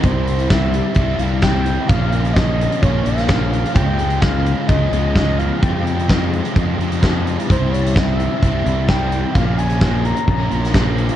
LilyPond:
<<
  \new Staff \with { instrumentName = "Soft synth lead" } { \time 4/4 \key c \phrygian \tempo 4 = 129 c''4 e''4 e''8 f''8 g''4 | f''4 ees''4 des''8 f''4 f''8 | g''4 f''4 ees''4 ees''8 f''8 | g''4 r2. |
c''8 des''8 e''4 e''4 g''4 | f''8 aes''4 bes''2 r8 | }
  \new Staff \with { instrumentName = "Overdriven electric guitar" } { \time 4/4 \key c \phrygian <c e g c' e'>4 <e g c' e'>4 <c e g c' e'>8 <g c' e'>8 <e g c' e'>4 | <bes, f bes des' f'>4 <f bes des' f'>4 <bes, f bes des' f'>8 <bes des' f'>8 <f bes des' f'>4 | <des f aes des' f'>4 <f aes des' f'>4 <des f aes des' f'>8 <aes des' f'>8 <f aes des' f'>4 | <f, c f aes c' f'>4 <f aes c' f'>4 <f, c f aes c' f'>8 <f aes c' f'>8 <f aes c' f'>4 |
<c e g c' e'>4 <e g c' e'>4 <c e g c' e'>8 <g c' e'>8 <e g c' e'>4 | <bes, f bes des' f'>4 <f bes des' f'>4 <bes, f bes des' f'>8 <bes des' f'>8 <f bes des' f'>4 | }
  \new Staff \with { instrumentName = "Overdriven electric guitar" } { \clef bass \time 4/4 \key c \phrygian <c g c' e'>4 <c g c' e'>4 <c g c' e'>8 <g c' e'>8 <c g c' e'>4 | <bes, f bes des'>4 <bes, f bes des'>4 <bes, f bes des'>8 <f bes des'>8 <bes, f bes des'>4 | <des f aes des'>4 <des f aes des'>4 <des f aes des'>8 <f aes des'>8 <des f aes des'>4 | <f, c f aes c'>4 <c f aes c'>4 <f, c f aes c'>8 <f aes c'>8 <c f aes c'>4 |
<c g c' e'>4 <c g c' e'>4 <c g c' e'>8 <g c' e'>8 <c g c' e'>4 | <bes, f bes des'>4 <bes, f bes des'>4 <bes, f bes des'>8 <f bes des'>8 <bes, f bes des'>4 | }
  \new Staff \with { instrumentName = "Fingered electric bass" } { \clef bass \time 4/4 \key c \phrygian c,2 c,8 c,4. | bes,,2 bes,,8 bes,,4. | des,2 des,8 des,4. | f,2 f,8 f,4. |
c,2 c,8 c,4. | bes,,2 bes,,8 bes,,4. | }
  \new DrumStaff \with { instrumentName = "Drums" } \drummode { \time 4/4 <hh bd>8 hh16 hh16 <hh bd sn>8 hh8 <hh bd>8 hh8 <hh bd sn>8 hh8 | <hh bd>8 hh16 hh16 <hh bd sn>8 hh16 hh16 <hh bd>8 hh16 <hh sn>16 <hh bd sn>8 hh16 hh16 | <hh bd>8 hh16 hh16 <hh bd sn>8 hh8 <hh bd>8 hh8 <hh bd sn>8 hh8 | <hh bd>8 hh16 hh16 <hh bd sn>8 hh16 hh16 <hh bd>8 hh16 hh16 <hh bd sn>8 hh16 hh16 |
<hh bd>8 hh16 hh16 <hh bd sn>8 hh8 <hh bd>8 hh8 <hh bd sn>8 hh8 | <hh bd>8 hh16 hh16 <hh bd sn>8 hh16 hh16 <hh bd>8 hh16 <hh sn>16 <hh bd sn>8 hh16 hh16 | }
>>